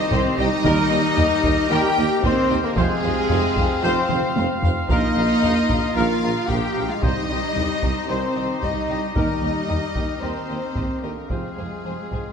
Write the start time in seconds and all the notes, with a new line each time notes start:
Already playing: G3 A#3 D#4 G4 C5 D#5
0.11 C2 D#3 C4 C5 D#5 G5, taiko
0.37 C2 G3 D#4 D#5 G5
0.64 D#2 D#3 G3 A#4 D#5 G5, taiko
0.91 D#2 D#5 G5
1.17 D#2 D#5 G5, taiko low
1.43 D#2 D#5 G5, taiko
1.69 D#2 D#3 G3 A#3 G4 A#4 D#5 G5
1.97 D#2 D#5 G5
2.23 D#2 D#3 C4 C5 D#5 G5, taiko
2.50 D#2 D#5 G5
2.64 D3 A#3 A#4
2.76 F1 F2 C3 F3 G#3 C4 F4 G#4 C5 F5, taiko
3.03 F1 F2 C5 F5
3.29 F1 F2 C5 F5, taiko low
3.56 F1 F2 C5 F5, taiko
3.82 F1 F2 C3 F3 C4 C5 F5
4.09 F1 F2 C5 F5, taiko mid
4.36 F1 F2 C5 F5, taiko high
4.63 F1 F2 C5 F5, taiko low
4.88 A#1 D#3 F3 A#3 D#4 A#4 D#5 F5, taiko
5.16 A#1 A#4 F5
5.43 A#1 A#4 F5, taiko low
5.69 A#1 A#4 F5, taiko
5.95 A#1 D#3 F3 A#3 F4 A#4 F5
6.22 A#1 A#4 F5
6.47 A#1 A#3 G4 F5 G5, taiko
6.51 A#4
6.76 A#1 A#4 F5
6.87 G#3 F4 F5
7.02 C2 D#3 G3 D#4 G4 C5 D#5, taiko
7.29 C2 G4 D#5
7.56 C2 G4 D#5, taiko low
7.83 C2 G4 D#5, taiko
8.08 C2 D#3 G3 C4 G4 C5 D#5
8.36 C2 G4 D#5
8.60 C2 G3 D#4 G4 D#5, taiko
8.89 C2 G4 D#5
9.15 D#2 D#3 G3 D#4 G4 A#4 D#5, taiko
9.42 D#2 G4 D#5
9.69 D#2 G4 D#5, taiko low
9.95 D#2 G4 D#5, taiko
10.21 D#2 D#3 G3 C4 G4 A#4 C5 D#5
10.48 D#2 G4 D#5
10.75 D#2 G4 D#5, taiko
11.03 D#2 D3 A#3 G4 A#4 D#5
11.28 F1 F2 C3 F3 G#3 C4 F4 G#4 C5 F5, taiko
11.57 F1 F2 G#4 C5
11.85 F1 F2 G#4 C5
12.12 F1 F2 G#4 C5, taiko